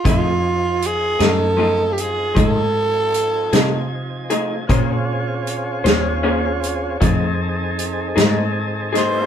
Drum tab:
HH |x-xx-xx-xx-x|x-xx-xx-xx-x|
SD |---o-----o--|---o-----o-o|
BD |o-----o-----|o-----o-----|